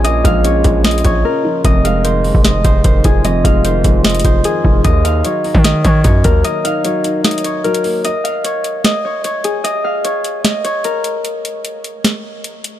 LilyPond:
<<
  \new Staff \with { instrumentName = "Harp" } { \time 4/4 \key ees \dorian \tempo 4 = 150 ees''8 f''8 des''4 ees''8 des''8 bes'4 | ees''8 f''8 c''4 ees''8 c''8 c''8 aes'8 | ees''8 f''8 c''4 ees''8 c''8 aes'4 | ees''8 f''8 des''4 ees''8 des''8 des''8 bes'8 |
ees''8 f''8 des''4 ees''8 des''8 bes'4 | ees''8 f''8 des''4 ees''8 des''8 des''8 aes'8 | ees''8 f''8 des''4 ees''8 des''8 bes'4 | r1 | }
  \new Staff \with { instrumentName = "Felt piano" } { \clef bass \time 4/4 \key ees \dorian <bes, des f>8 aes8 des8 aes4. des8 f8 | f,8 aes8 ees8 aes4. ees8 f8 | f,8 aes8 ees8 aes4. ees8 f8 | ees8 ees'8 ges8 ees'4. ges8 bes8 |
ees8 ees'8 ges8 ees'4. ges8 bes8 | r1 | r1 | r1 | }
  \new Staff \with { instrumentName = "808-style bass" } { \clef bass \time 4/4 \key ees \dorian bes,,8 bes,,4 bes,,4 bes,,8 r4 | f,,4.~ f,,16 f,,8. f,,8 f,,8 f,,8~ | f,,8 f,,4 f,,4 f,,8 r8 f,,8 | ees,4 r8. ees8. ees8 ges,8 ees,8 |
r1 | r1 | r1 | r1 | }
  \new DrumStaff \with { instrumentName = "Drums" } \drummode { \time 4/4 hh8 <hh bd>8 hh8 <hh bd>8 \tuplet 3/2 { <hh sn>16 hh16 hh16 <hh bd>16 r16 r16 } r4 | <hh bd>8 hh8 hh8 hho16 bd16 <hh sn>8 <hh bd>8 <hh bd>8 <hh bd>8 | hh8 <hh bd>8 hh8 <hh bd>8 <hh sn>32 hh32 hh32 hh32 <hh bd>8 hh8 bd8 | <hh bd>8 hh8 hh8 hho16 bd16 <hh sn>8 <hh bd>8 <hh bd>8 <hh bd>8 |
hh8 hh8 hh8 hh8 \tuplet 3/2 { <hh sn>16 hh16 hh16 hh16 r16 r16 } hh16 hh16 hho8 | hh8 hh8 hh8 hh8 <hh sn>4 hh8 hh8 | hh4 hh8 hh8 <hh sn>8 hh8 hh8 hh8 | hh8 hh8 hh8 hh8 <hh sn>4 hh8 hh8 | }
>>